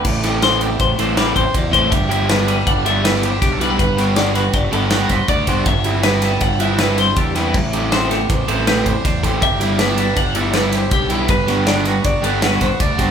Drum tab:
CC |x---------|----------|----------|----------|
RD |-xxxxxxxxx|xxxxxxxxxx|xxxxxxxxxx|xxxxxxxxxx|
SD |-oo--oo---|--o---o-o-|-ooo--oo-o|--oo--oo-o|
BD |o---o--ooo|o---o---o-|o---o--ooo|o---o---o-|

CC |x---------|----------|----------|
RD |-xxxxxxxxx|xxxxxxxxxx|xxxxxxxxxx|
SD |--oo--o-oo|--o---oo--|-ooo--oo-o|
BD |o---o--ooo|o---o---o-|o---o--ooo|